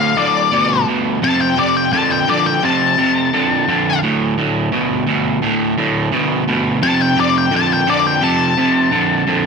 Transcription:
0.00 0.13 D2 medium
0.00 0.13 A2 medium
0.00 0.17 F5 medium
0.17 0.48 D2 medium
0.17 0.48 A2 medium
0.17 0.85 D5 loud
0.52 0.83 D2 medium
0.52 0.84 B2 medium
0.87 1.18 D2 medium
0.87 1.19 B2 medium
1.22 1.53 F2 medium
1.22 1.54 C3 medium
1.22 1.40 A5 loud
1.41 1.57 G5 medium
1.57 1.88 F2 medium
1.57 1.89 C3 medium
1.57 1.75 D5 medium
1.77 1.92 G5 medium
1.92 2.24 F2 medium
1.92 2.24 D3 medium
1.92 2.09 A5 medium
2.12 2.28 G5 medium
2.27 2.58 F2 medium
2.27 2.59 D3 medium
2.27 2.45 D5 loud
2.46 2.62 G5 medium
2.62 2.94 F2 medium
2.62 2.94 C3 medium
2.62 4.00 A5 loud
2.97 3.29 F2 medium
2.97 3.29 C3 medium
3.33 3.64 F2 medium
3.33 3.64 D3 loud
3.68 3.99 F2 medium
3.68 3.99 D3 medium
4.03 4.34 D2 medium
4.03 4.34 A2 medium
4.38 4.69 D2 medium
4.38 4.69 A2 medium
4.72 5.04 D2 medium
4.72 5.04 B2 medium
5.07 5.38 D2 medium
5.07 5.39 B2 medium
5.42 5.73 D2 medium
5.42 5.74 A2 loud
5.77 6.09 D2 medium
5.77 6.09 A2 medium
6.12 6.44 D2 medium
6.12 6.44 B2 medium
6.48 6.79 D2 medium
6.48 6.79 B2 medium
6.82 7.13 F2 medium
6.82 7.14 C3 loud
6.82 7.00 A5 loud
7.02 7.18 G5 medium
7.16 7.48 F2 medium
7.16 7.48 C3 medium
7.20 7.35 D5 loud
7.38 7.53 G5 medium
7.51 7.83 F2 medium
7.51 7.83 D3 medium
7.56 7.71 A5 medium
7.73 7.88 G5 loud
7.87 8.18 F2 medium
7.87 8.18 D3 medium
7.87 8.05 D5 medium
8.07 8.24 G5 medium
8.21 8.53 F2 medium
8.21 8.53 C3 loud
8.21 9.46 A5 loud
8.57 8.88 F2 medium
8.57 8.88 C3 medium
8.91 9.23 F2 medium
8.91 9.23 D3 loud
9.27 9.46 F2 medium
9.27 9.46 D3 medium

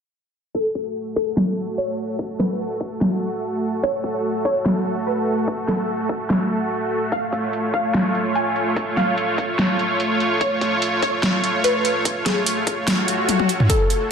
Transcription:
0.55 13.66 A3 medium
0.55 7.08 F#4 medium
0.55 1.09 A4 medium
0.55 7.08 A4 medium
0.55 kick loud
0.75 kick medium
1.16 1.70 A4 medium
1.16 kick loud
1.37 snare loud
1.78 2.32 C#5 medium
2.19 kick loud
2.40 3.76 B4 medium
2.40 snare medium
2.81 kick loud
3.01 snare loud
3.83 4.37 C#5 loud
3.83 kick loud
4.04 kick medium
4.45 4.99 C#5 loud
4.45 kick loud
4.66 snare loud
5.07 5.61 B4 medium
5.48 kick loud
5.68 7.04 A4 medium
5.68 snare medium
6.09 kick loud
6.30 snare loud
7.12 13.66 F4 medium
7.12 13.66 C#5 medium
7.12 7.66 F5 loud
7.12 kick loud
7.12 closed hi-hat medium
7.33 kick medium
7.33 closed hi-hat soft
7.53 closed hi-hat medium
7.74 8.28 F5 medium
7.74 kick loud
7.74 closed hi-hat soft
7.94 snare loud
7.94 closed hi-hat medium
8.15 closed hi-hat soft
8.35 8.89 G#5 medium
8.35 closed hi-hat medium
8.56 closed hi-hat soft
8.76 kick loud
8.76 closed hi-hat medium
8.97 10.33 F5 medium
8.97 snare medium
8.97 closed hi-hat soft
9.18 closed hi-hat medium
9.38 kick loud
9.38 closed hi-hat soft
9.59 snare loud
9.59 closed hi-hat medium
9.79 closed hi-hat soft
10.00 closed hi-hat medium
10.20 closed hi-hat soft
10.41 10.95 C#5 loud
10.41 kick loud
10.41 closed hi-hat medium
10.61 kick medium
10.61 closed hi-hat medium
10.82 closed hi-hat medium
11.03 11.57 C#5 medium
11.03 kick loud
11.03 closed hi-hat soft
11.23 snare loud
11.23 closed hi-hat medium
11.44 closed hi-hat medium
11.64 12.18 B4 medium
11.64 closed hi-hat medium
11.85 closed hi-hat medium
12.05 kick loud
12.05 closed hi-hat medium
12.26 13.62 G#4 medium
12.26 kick medium
12.26 snare medium
12.26 closed hi-hat medium
12.46 closed hi-hat medium
12.67 kick loud
12.67 closed hi-hat medium
12.87 snare loud
12.87 closed hi-hat medium
12.87 swell medium
13.08 closed hi-hat medium
13.29 closed hi-hat medium
13.29 high tom medium
13.40 kick medium
13.40 high tom medium
13.49 closed hi-hat medium
13.60 mid tom medium
13.70 14.12 A3 medium
13.70 14.12 F#4 medium
13.70 14.12 A4 medium
13.70 14.12 A4 loud
13.70 kick medium
13.70 closed hi-hat medium
13.90 closed hi-hat medium

